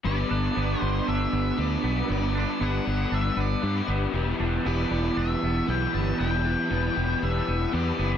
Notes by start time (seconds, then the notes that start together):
0.04 G1 G3 B3 D4 G4 B4 D5
0.29 G1 D4 G4 B4
0.55 G1 B3 D4 G4 B4
0.79 G1 D4 G4 B4 C5
1.08 G1 D4 E5
1.33 G1 B3
1.57 D2 B3 D4 G4 B4 D5
1.83 B1 B3 D4 G4 B4
2.08 G1 G3 B3 D4 G4 B4 D5
2.34 D4 G4 B4
2.39 D5
2.59 G1 B3 D4 G4 B4 F#5
2.85 G1 D4 G4 B4
3.11 G1 D4 E5
3.36 G1 B3
3.40 D5
3.62 G2 B3 D4 G4 B4
3.88 G1 B3 D4 G4 B4
4.13 E1 E3 G3 B3 E4 G4 B4
4.39 E1 D4 E4 G4 B4
4.65 E1 B3 E4 G4 B4 D5
4.91 E1 G3 E4 G4 B4
5.17 E1 D4 E5
5.43 E1 B3
5.67 B1 G3 B3 E4 G4 B4 G5
5.93 G1 B3 E4 G4 B4 A5
6.19 E1 E3 G3 B3 E4 G4 B4 G5
6.44 D4 E4 G4 B4
6.70 E1 B3 E4 G4 B4
6.94 E1 G3 E4 G4 B4
7.22 E1 D4 E5
7.47 E1 B3
7.72 E2 G3 B3 E4 G4 B4 D5
7.98 F#1 B3 E4 G4 B4